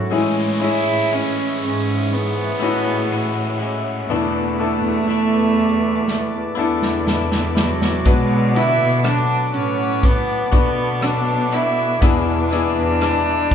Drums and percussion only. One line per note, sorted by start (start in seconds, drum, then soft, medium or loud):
6.08 snare soft
6.82 snare medium
7.07 snare medium
7.32 snare medium
7.57 snare medium
7.82 snare medium
8.06 kick medium
8.06 closed hi-hat medium
8.56 closed hi-hat medium
9.04 cross-stick loud
9.04 closed hi-hat medium
9.54 closed hi-hat medium
10.03 kick medium
10.03 closed hi-hat medium
10.52 kick medium
10.52 closed hi-hat medium
11.02 cross-stick medium
11.02 closed hi-hat medium
11.52 cross-stick soft
11.52 closed hi-hat medium
12.02 kick medium
12.02 closed hi-hat medium
12.53 closed hi-hat medium
13.01 cross-stick medium
13.01 closed hi-hat medium
13.51 kick medium
13.51 closed hi-hat medium